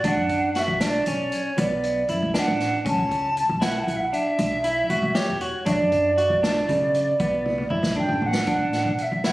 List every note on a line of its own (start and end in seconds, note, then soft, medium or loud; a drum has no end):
0.04 0.15 B1 medium
0.04 0.49 D4 medium
0.04 0.59 F#5 medium
0.04 kick loud
0.04 closed hi-hat medium
0.16 0.61 F#2 medium
0.29 kick medium
0.29 closed hi-hat medium
0.55 0.78 F#4 medium
0.55 0.82 E5 medium
0.55 snare soft
0.55 closed hi-hat medium
0.68 1.01 B1 medium
0.81 1.03 D4 medium
0.81 0.87 E5 medium
0.81 snare loud
0.81 closed hi-hat medium
0.86 1.35 D5 medium
1.06 1.29 B1 medium
1.06 1.51 C#4 medium
1.06 closed hi-hat medium
1.32 1.60 C#5 medium
1.32 closed hi-hat medium
1.58 2.03 B1 loud
1.58 2.02 B3 medium
1.58 2.08 D5 medium
1.58 closed hi-hat medium
1.83 closed hi-hat soft
2.09 2.20 F#2 medium
2.09 2.31 E4 medium
2.09 closed hi-hat medium
2.22 2.33 B1 medium
2.34 2.78 D4 medium
2.34 2.40 A5 medium
2.34 snare medium
2.34 closed hi-hat medium
2.39 2.82 F#5 loud
2.47 2.70 A1 medium
2.60 snare soft
2.60 closed hi-hat soft
2.85 2.97 B1 medium
2.85 3.29 C#4 medium
2.85 3.63 A5 loud
2.85 kick medium
2.85 closed hi-hat medium
2.98 3.43 C#2 medium
3.11 kick medium
3.11 closed hi-hat medium
3.37 closed hi-hat medium
3.49 3.83 B1 medium
3.61 4.06 E4 medium
3.61 3.80 F#5 medium
3.61 snare loud
3.61 closed hi-hat medium
3.79 3.84 A5 medium
3.83 3.97 F#5 medium
3.87 4.10 B1 medium
3.87 closed hi-hat medium
3.96 4.01 E5 medium
4.00 4.15 F#5 medium
4.13 4.57 D4 medium
4.13 5.17 E5 loud
4.13 closed hi-hat medium
4.38 4.83 B1 medium
4.38 closed hi-hat medium
4.64 4.86 E4 medium
4.64 closed hi-hat medium
4.90 5.01 C#2 medium
4.90 5.12 F#4 medium
4.90 closed hi-hat medium
5.03 5.14 B1 medium
5.15 5.37 G4 medium
5.15 5.68 C#5 medium
5.15 snare medium
5.15 closed hi-hat medium
5.29 5.51 E1 medium
5.41 5.63 F#4 medium
5.41 closed hi-hat medium
5.66 5.78 B1 medium
5.66 6.10 D4 medium
5.66 5.72 E5 medium
5.66 kick loud
5.66 closed hi-hat medium
5.71 7.69 D5 medium
5.79 6.24 F#2 medium
5.92 kick medium
5.92 closed hi-hat medium
6.18 6.40 F#4 medium
6.18 closed hi-hat medium
6.30 6.64 B1 medium
6.43 6.65 D4 medium
6.43 snare loud
6.43 closed hi-hat medium
6.69 6.91 B1 medium
6.69 7.13 C#3 medium
6.69 kick medium
6.69 closed hi-hat medium
6.94 closed hi-hat medium
7.20 7.65 B1 medium
7.20 7.64 B3 medium
7.20 kick medium
7.20 closed hi-hat medium
7.46 high tom soft
7.58 high tom medium
7.70 7.81 F#2 medium
7.70 7.93 E4 medium
7.70 mid tom medium
7.83 7.94 B1 medium
7.83 snare medium
7.96 8.40 D4 medium
7.96 8.21 G5 loud
7.96 mid tom medium
8.08 8.31 A1 medium
8.08 mid tom medium
8.22 9.03 F#5 loud
8.22 floor tom medium
8.34 snare medium
8.47 8.59 B1 medium
8.47 8.92 D4 medium
8.47 kick loud
8.47 closed hi-hat medium
8.59 8.82 A1 medium
8.73 snare soft
8.73 closed hi-hat soft
8.85 9.08 B2 medium
8.98 9.27 E5 medium
8.98 closed hi-hat medium
9.12 9.32 B1 medium
9.24 9.32 E4 medium
9.24 9.32 F#5 medium
9.24 snare loud
9.24 closed hi-hat medium